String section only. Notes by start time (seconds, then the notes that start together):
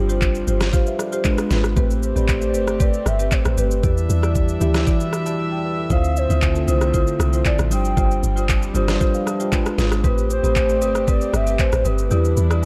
Already playing: F3 G3 C4
1.25 G#3 B3
1.77 A3 C4 G4
3.83 G3 D4 E5
5.90 D3 F3 A3 C4
7.71 G3
9.52 G#3 B3 F4
10.04 A3 C4 G4
12.11 G3 D4 E4